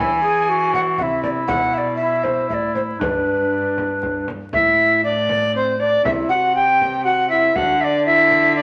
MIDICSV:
0, 0, Header, 1, 5, 480
1, 0, Start_track
1, 0, Tempo, 504202
1, 1424, Time_signature, 3, 2, 24, 8
1, 8206, End_track
2, 0, Start_track
2, 0, Title_t, "Recorder"
2, 0, Program_c, 0, 74
2, 0, Note_on_c, 0, 64, 75
2, 209, Note_off_c, 0, 64, 0
2, 216, Note_on_c, 0, 68, 82
2, 461, Note_on_c, 0, 66, 72
2, 476, Note_off_c, 0, 68, 0
2, 935, Note_off_c, 0, 66, 0
2, 935, Note_on_c, 0, 66, 74
2, 977, Note_on_c, 0, 64, 81
2, 987, Note_off_c, 0, 66, 0
2, 1894, Note_off_c, 0, 64, 0
2, 1899, Note_on_c, 0, 64, 74
2, 2847, Note_on_c, 0, 62, 65
2, 2862, Note_off_c, 0, 64, 0
2, 4072, Note_off_c, 0, 62, 0
2, 4314, Note_on_c, 0, 76, 94
2, 4766, Note_off_c, 0, 76, 0
2, 4795, Note_on_c, 0, 74, 96
2, 5271, Note_off_c, 0, 74, 0
2, 5287, Note_on_c, 0, 72, 90
2, 5515, Note_on_c, 0, 74, 99
2, 5529, Note_off_c, 0, 72, 0
2, 5748, Note_off_c, 0, 74, 0
2, 5754, Note_on_c, 0, 76, 89
2, 5811, Note_off_c, 0, 76, 0
2, 5986, Note_on_c, 0, 78, 107
2, 6229, Note_off_c, 0, 78, 0
2, 6236, Note_on_c, 0, 79, 120
2, 6698, Note_off_c, 0, 79, 0
2, 6704, Note_on_c, 0, 78, 115
2, 6935, Note_off_c, 0, 78, 0
2, 6941, Note_on_c, 0, 76, 111
2, 7192, Note_on_c, 0, 78, 106
2, 7206, Note_off_c, 0, 76, 0
2, 7428, Note_on_c, 0, 76, 96
2, 7442, Note_off_c, 0, 78, 0
2, 7459, Note_on_c, 0, 74, 105
2, 7469, Note_off_c, 0, 76, 0
2, 7662, Note_off_c, 0, 74, 0
2, 7668, Note_on_c, 0, 76, 110
2, 8139, Note_off_c, 0, 76, 0
2, 8147, Note_on_c, 0, 74, 97
2, 8206, Note_off_c, 0, 74, 0
2, 8206, End_track
3, 0, Start_track
3, 0, Title_t, "Recorder"
3, 0, Program_c, 1, 74
3, 0, Note_on_c, 1, 80, 120
3, 687, Note_off_c, 1, 80, 0
3, 710, Note_on_c, 1, 78, 107
3, 767, Note_off_c, 1, 78, 0
3, 934, Note_on_c, 1, 78, 86
3, 972, Note_on_c, 1, 76, 94
3, 981, Note_off_c, 1, 78, 0
3, 1167, Note_off_c, 1, 76, 0
3, 1173, Note_on_c, 1, 74, 99
3, 1230, Note_off_c, 1, 74, 0
3, 1406, Note_on_c, 1, 78, 113
3, 1657, Note_on_c, 1, 76, 92
3, 1671, Note_off_c, 1, 78, 0
3, 1692, Note_on_c, 1, 74, 100
3, 1702, Note_off_c, 1, 76, 0
3, 1860, Note_off_c, 1, 74, 0
3, 1866, Note_on_c, 1, 76, 98
3, 2129, Note_on_c, 1, 72, 93
3, 2143, Note_off_c, 1, 76, 0
3, 2369, Note_off_c, 1, 72, 0
3, 2375, Note_on_c, 1, 76, 84
3, 2412, Note_on_c, 1, 74, 91
3, 2422, Note_off_c, 1, 76, 0
3, 2614, Note_off_c, 1, 74, 0
3, 2620, Note_on_c, 1, 72, 79
3, 2677, Note_off_c, 1, 72, 0
3, 2869, Note_on_c, 1, 71, 90
3, 4058, Note_off_c, 1, 71, 0
3, 4342, Note_on_c, 1, 64, 87
3, 4782, Note_off_c, 1, 64, 0
3, 4804, Note_on_c, 1, 62, 91
3, 5271, Note_off_c, 1, 62, 0
3, 5277, Note_on_c, 1, 60, 77
3, 5501, Note_off_c, 1, 60, 0
3, 5507, Note_on_c, 1, 62, 89
3, 5747, Note_off_c, 1, 62, 0
3, 5752, Note_on_c, 1, 64, 95
3, 6000, Note_on_c, 1, 67, 92
3, 6014, Note_off_c, 1, 64, 0
3, 6044, Note_on_c, 1, 66, 100
3, 6053, Note_off_c, 1, 67, 0
3, 6231, Note_off_c, 1, 66, 0
3, 6236, Note_on_c, 1, 67, 97
3, 6710, Note_on_c, 1, 66, 94
3, 6725, Note_off_c, 1, 67, 0
3, 6950, Note_off_c, 1, 66, 0
3, 6956, Note_on_c, 1, 64, 86
3, 7191, Note_on_c, 1, 66, 96
3, 7205, Note_off_c, 1, 64, 0
3, 7411, Note_off_c, 1, 66, 0
3, 7417, Note_on_c, 1, 62, 90
3, 7659, Note_off_c, 1, 62, 0
3, 7670, Note_on_c, 1, 64, 93
3, 8143, Note_on_c, 1, 62, 83
3, 8157, Note_off_c, 1, 64, 0
3, 8206, Note_off_c, 1, 62, 0
3, 8206, End_track
4, 0, Start_track
4, 0, Title_t, "Cello"
4, 0, Program_c, 2, 42
4, 0, Note_on_c, 2, 52, 80
4, 946, Note_on_c, 2, 48, 70
4, 960, Note_off_c, 2, 52, 0
4, 1417, Note_off_c, 2, 48, 0
4, 1422, Note_on_c, 2, 47, 78
4, 2383, Note_on_c, 2, 45, 67
4, 2397, Note_off_c, 2, 47, 0
4, 2858, Note_off_c, 2, 45, 0
4, 2864, Note_on_c, 2, 43, 69
4, 4105, Note_off_c, 2, 43, 0
4, 4320, Note_on_c, 2, 45, 82
4, 5724, Note_off_c, 2, 45, 0
4, 5763, Note_on_c, 2, 48, 80
4, 7166, Note_off_c, 2, 48, 0
4, 7193, Note_on_c, 2, 50, 98
4, 8206, Note_off_c, 2, 50, 0
4, 8206, End_track
5, 0, Start_track
5, 0, Title_t, "Frame drum"
5, 0, Note_on_c, 9, 64, 82
5, 91, Note_off_c, 9, 64, 0
5, 700, Note_on_c, 9, 64, 54
5, 795, Note_off_c, 9, 64, 0
5, 932, Note_on_c, 9, 64, 49
5, 1028, Note_off_c, 9, 64, 0
5, 1177, Note_on_c, 9, 64, 54
5, 1272, Note_off_c, 9, 64, 0
5, 1414, Note_on_c, 9, 64, 84
5, 1509, Note_off_c, 9, 64, 0
5, 2137, Note_on_c, 9, 64, 53
5, 2233, Note_off_c, 9, 64, 0
5, 2381, Note_on_c, 9, 64, 49
5, 2476, Note_off_c, 9, 64, 0
5, 2621, Note_on_c, 9, 64, 46
5, 2716, Note_off_c, 9, 64, 0
5, 2867, Note_on_c, 9, 64, 88
5, 2962, Note_off_c, 9, 64, 0
5, 3597, Note_on_c, 9, 64, 48
5, 3692, Note_off_c, 9, 64, 0
5, 3834, Note_on_c, 9, 64, 53
5, 3930, Note_off_c, 9, 64, 0
5, 4074, Note_on_c, 9, 64, 52
5, 4170, Note_off_c, 9, 64, 0
5, 4312, Note_on_c, 9, 64, 80
5, 4407, Note_off_c, 9, 64, 0
5, 5038, Note_on_c, 9, 64, 54
5, 5133, Note_off_c, 9, 64, 0
5, 5762, Note_on_c, 9, 64, 84
5, 5857, Note_off_c, 9, 64, 0
5, 6488, Note_on_c, 9, 64, 55
5, 6583, Note_off_c, 9, 64, 0
5, 7194, Note_on_c, 9, 64, 75
5, 7289, Note_off_c, 9, 64, 0
5, 7911, Note_on_c, 9, 64, 51
5, 8006, Note_off_c, 9, 64, 0
5, 8206, End_track
0, 0, End_of_file